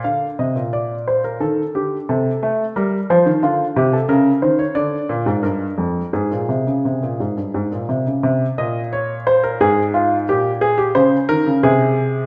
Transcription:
<<
  \new Staff \with { instrumentName = "Grand piano" } { \time 3/4 \key bes \mixolydian \tempo 4 = 88 f''8 ees''8 d''8 c''16 bes'16 a'8 g'8 | a'4 bes'8 c''8 f'8 g'16 a'16 | \key bes \dorian bes'8 c''16 des''16 d''4 bes'4 | aes'2~ aes'8 r8 |
r8 ees''8 des''8 c''16 bes'16 aes'8 f'8 | g'8 aes'16 g'16 c''8 bes'8 aes'4 | }
  \new Staff \with { instrumentName = "Grand piano" } { \clef bass \time 3/4 \key bes \mixolydian d8 c16 bes,4~ bes,16 ees8 d8 | c8 a8 g8 f16 ees16 d8 c8 | \key bes \dorian des8 ees8 d8 bes,16 aes,16 g,8 f,8 | aes,16 bes,16 c16 des16 c16 bes,16 aes,16 g,16 aes,16 bes,16 c16 des16 |
c8 bes,4. aes,4 | bes,4 des8 ees16 des16 c4 | }
>>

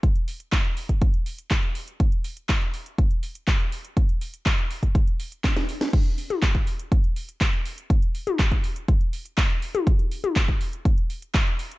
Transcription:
\new DrumStaff \with { instrumentName = "Drums" } \drummode { \time 4/4 \tempo 4 = 122 <hh bd>16 hh16 hho16 hh16 <hc hh bd>16 hh16 hho16 <hh bd>16 <hh bd>16 hh16 hho16 hh16 <hc hh bd>16 hh16 hho16 hh16 | <hh bd>16 hh16 hho16 hh16 <hc hh bd>16 hh16 hho16 hh16 <hh bd>16 hh16 hho16 hh16 <hc hh bd>16 hh16 hho16 hh16 | <hh bd>16 hh16 hho16 hh16 <hc hh bd>16 hh16 hho16 <hh bd>16 <hh bd>16 hh16 hho16 hh16 <hc hh bd sn>16 <hh sn>16 hho16 <hh sn>16 | <cymc hh bd>16 hh16 hho16 <hh tommh>16 <hc hh bd>16 <hh bd>16 hho16 hh16 <hh bd>16 hh16 hho16 hh16 <hc hh bd>16 hh16 hho16 hh16 |
<hh bd>16 hh16 hho16 <hh tommh>16 <hc hh bd>16 <hh bd>16 hho16 hh16 <hh bd>16 hh16 hho16 hh16 <hc hh bd>16 hh16 hho16 <hh tommh>16 | <hh bd>16 hh16 hho16 <hh tommh>16 <hc hh bd>16 <hh bd>16 hho16 hh16 <hh bd>16 hh16 hho16 hh16 <hc hh bd>16 hh16 hho16 hh16 | }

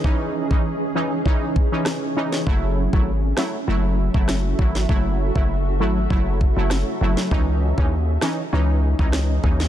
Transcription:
<<
  \new Staff \with { instrumentName = "Ambient pad" } { \time 4/4 \key cis \minor \tempo 4 = 99 << { <e gis' cis''>1 | <fis' a' e''>1~ | <fis' a' e''>1 | <dis' gis' dis''>1 | } \\ { cis'1~ | cis'1~ | cis'1 | cis'1 | } >> }
  \new Staff \with { instrumentName = "Synth stab" } { \time 4/4 \key cis \minor <e cis' dis'>8. <e cis' dis'>16 r8 <e cis' dis'>16 r16 <e cis' dis'>8. <e cis' dis'>8. <e cis' dis'>8 | <fis a e'>8. <fis a e'>16 r8 <fis a e'>16 r16 <fis a e'>8. <fis a e'>8. <fis a e'>8 | <fis a e'>8. <fis a e'>16 r8 <fis a e'>16 r16 <fis a e'>8. <fis a e'>8. <fis a e'>8 | <e cis' dis'>8. <e cis' dis'>16 r8 <e cis' dis'>16 r16 <e cis' dis'>8. <e cis' dis'>8. <e cis' dis'>8 | }
  \new Staff \with { instrumentName = "808-style bass" } { \clef bass \time 4/4 \key cis \minor r1 | fis,,8. gis,,8. r8 fis,,8. fis,,8. gis,,8 | fis,,8. fis,,8. gis,,8 fis,,8. fis,,8 r16 fis,,16 r16 | cis,8. dis,8. r8 cis,8. cis,8. dis,8 | }
  \new DrumStaff \with { instrumentName = "Drums" } \drummode { \time 4/4 bd8. bd16 r4 bd8 bd8 <ss sn>8. sn16 | bd8. bd16 r8 <ss sn>8 r8. bd16 <ss sn>8 bd16 sn16 | bd8. bd16 r4 bd8 bd8 <ss sn>8. sn16 | bd8. bd16 r8 <ss sn>8 r8. bd16 <ss sn>8 bd16 sn16 | }
>>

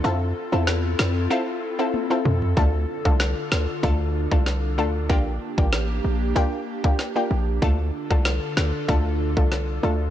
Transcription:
<<
  \new Staff \with { instrumentName = "Synth pluck" } { \time 4/4 \key d \minor \tempo 4 = 95 <c' e' f' a'>16 r8 <c' e' f' a'>16 r4 <c' e' f' a'>16 r8 <c' e' f' a'>16 r16 <c' e' f' a'>16 r8 | <a d' f' a'>16 r8 <a d' f' a'>16 r4 <a d' f' a'>16 r8 <a d' f' a'>16 r8 <a d' f' a'>16 r16 | <bes d' f' g'>16 r8 <bes d' f' g'>16 r4 <bes d' f' g'>16 r8 <bes d' f' g'>16 r16 <bes d' f' g'>16 r8 | <a d' f' a'>16 r8 <a d' f' a'>16 r4 <a d' f' a'>16 r8 <a d' f' a'>16 r8 <a d' f' a'>16 r16 | }
  \new Staff \with { instrumentName = "Analog synth pad" } { \time 4/4 \key d \minor << { a'1~ | a'1 | g'1 | a'1 | } \\ { <c' e' f'>1 | <d d' f'>1 | bes1 | <d d' f'>1 | } >> }
  \new Staff \with { instrumentName = "808-style bass" } { \clef bass \time 4/4 \key d \minor f,8 r16 e,8. f,8 r4. f,8 | d,8 r16 c,8 r16 d,16 r16 d,8. c,8. d,8 | bes,,8 r16 a,,8. bes,,8 r4. bes,,8 | d,8 r16 c,8 r16 d,16 r16 d,8. c,8. d,8 | }
  \new DrumStaff \with { instrumentName = "Drums" } \drummode { \time 4/4 r4 sn8 sn8 r4 tommh8 toml16 tomfh16 | bd8. bd16 sn8 sn8 bd8. bd16 sn4 | bd8. bd16 sn4 bd8. bd16 sn4 | bd8. bd16 sn8 sn8 bd8. bd16 sn4 | }
>>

